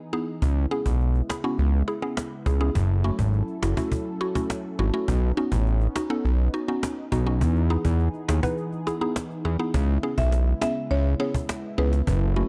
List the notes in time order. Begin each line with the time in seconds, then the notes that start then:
Already playing: E3 B3 D#4 G#4
0.13 B3 D#4 E4 G#4
0.42 C#2 C#3 G#3 B3 E4, cajon bass
0.71 B3 C#4 E4 G#4, cajon slap
0.86 B1, cajon bass
1.00 cajon slap
1.15 cajon slap
1.29 E4 G#4, cajon slap
1.44 B3 C#4 E4 F#4
1.59 C#2, cajon slap
1.88 E4 G#4, cajon slap
2.02 B3 C#4 E4 G#4
2.17 cajon slap
2.46 C#2 E4 G#4, cajon bass
2.61 B3 C#4 E4 G#4
2.75 F#1 F#3 C#4 A4, cajon bass
3.04 A3 C#4 E4 F#4, cajon slap
3.19 G#1, cajon bass
3.33 cajon slap
3.48 cajon slap
3.62 F#1 E4 F#4, cajon slap
3.77 A3 C#4 E4 F#4, cajon bass
3.92 cajon bass
4.21 E4 F#4, cajon slap
4.35 A3 C#4 E4 F#4, cajon bass
4.50 cajon slap
4.79 G#1 E4 F#4, cajon slap
4.94 A3 C#4 E4 F#4
5.08 B1 B3 D#4, cajon bass
5.37 B3 C#4 D#4 F#4, cajon slap
5.52 A1, cajon bass
5.66 cajon slap
5.81 cajon slap
5.96 D#4 F#4, cajon slap
6.10 B3 C#4 D#4 A4
6.24 B1, cajon slap
6.54 D#4 F#4, cajon slap
6.68 B3 C#4 D#4 F#4
6.83 cajon slap
7.12 B1 D#4 F#4, cajon bass
7.27 B3 C#4 D#4 F#4
7.41 E2 E3 B3 G#4, cajon bass
7.56 cajon slap
7.70 B3 D#4 E4 G#4, cajon slap
7.85 E2, cajon bass
7.99 cajon slap
8.14 cajon slap
8.28 D#2 E4 G#4, cajon slap
8.43 B3 D#4 E4 B4, cajon bass
8.57 cajon slap
8.72 cajon slap
8.87 E4 G#4, cajon slap
9.01 B3 D#4 E4 G#4
9.16 cajon slap
9.31 cajon slap
9.45 E2 E4 G#4, cajon slap
9.59 B3 D#4 E4 G#4
9.74 C#2 C#3 G#3 B3 E4, cajon bass
10.03 B3 C#4 E4 G#4
10.18 B1 E5, cajon bass
10.32 cajon slap
10.61 B3 C#4 E4 G#4 E5, cajon slap
10.90 C#2 C#5, cajon slap
11.20 B3 C#4 E4 G#4 C#5
11.34 cajon bass
11.49 cajon slap
11.78 C#2 B3 C#4 E4 G#4 B4
11.93 cajon slap
12.07 F#1 F#3 C#4 A4, cajon bass
12.36 A3 C#4 E4 F#4